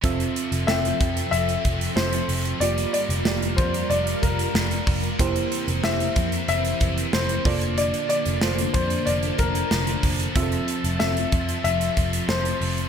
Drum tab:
HH |xxxx-xxxxxxx-xox|xxxx-xxxxxxx-xox|xxxx-xxxxxxx-xox|xxxx-xxxxxxx-xox|
SD |----o-------o---|----o-------o---|----o-------o---|----o-------o---|
BD |o-----o---o-----|------o---o---o-|o-----o---o---o-|------o---o---o-|

HH |xxxx-xxxxxxx-xox|
SD |----o-------o---|
BD |o-----o---o-----|